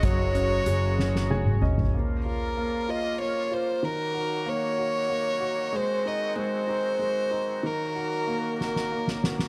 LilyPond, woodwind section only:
\new Staff \with { instrumentName = "Woodwind section" } { \clef bass \time 6/8 \key bes \minor \tempo 4. = 63 << { <des ges'>2. | <des f'>2. | <ees ges'>2.~ | <ees ges'>2.~ |
<ees ges'>2. | } \\ { <ges aes>2. | <f bes>2. | <ges bes>2. | <aes c'>2. |
<ges bes>2. | } >> }